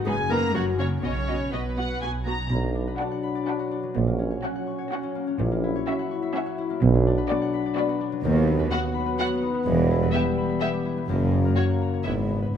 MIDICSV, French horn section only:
0, 0, Header, 1, 2, 480
1, 0, Start_track
1, 0, Tempo, 485044
1, 1022, Time_signature, 3, 2, 24, 8
1, 4862, Tempo, 476569
1, 12575, End_track
2, 0, Start_track
2, 0, Title_t, "French horn section"
2, 0, Program_c, 0, 60
2, 67, Note_on_c, 0, 68, 60
2, 298, Note_off_c, 0, 68, 0
2, 313, Note_on_c, 0, 70, 69
2, 543, Note_on_c, 0, 66, 65
2, 545, Note_off_c, 0, 70, 0
2, 777, Note_off_c, 0, 66, 0
2, 780, Note_on_c, 0, 61, 58
2, 1013, Note_off_c, 0, 61, 0
2, 1025, Note_on_c, 0, 61, 61
2, 1501, Note_off_c, 0, 61, 0
2, 1519, Note_on_c, 0, 59, 48
2, 2000, Note_off_c, 0, 59, 0
2, 2473, Note_on_c, 0, 54, 67
2, 2475, Note_on_c, 0, 62, 62
2, 3870, Note_off_c, 0, 62, 0
2, 3917, Note_on_c, 0, 61, 66
2, 5299, Note_off_c, 0, 54, 0
2, 5317, Note_off_c, 0, 61, 0
2, 5352, Note_on_c, 0, 54, 70
2, 5352, Note_on_c, 0, 64, 70
2, 6759, Note_off_c, 0, 64, 0
2, 6800, Note_on_c, 0, 62, 75
2, 8181, Note_off_c, 0, 54, 0
2, 8207, Note_on_c, 0, 59, 86
2, 8211, Note_on_c, 0, 54, 87
2, 8225, Note_off_c, 0, 62, 0
2, 9470, Note_off_c, 0, 54, 0
2, 9641, Note_on_c, 0, 55, 87
2, 11033, Note_off_c, 0, 59, 0
2, 11049, Note_off_c, 0, 55, 0
2, 11083, Note_on_c, 0, 54, 72
2, 11094, Note_on_c, 0, 58, 70
2, 12028, Note_off_c, 0, 54, 0
2, 12033, Note_off_c, 0, 58, 0
2, 12045, Note_on_c, 0, 52, 57
2, 12053, Note_on_c, 0, 59, 60
2, 12540, Note_off_c, 0, 52, 0
2, 12544, Note_off_c, 0, 59, 0
2, 12575, End_track
0, 0, End_of_file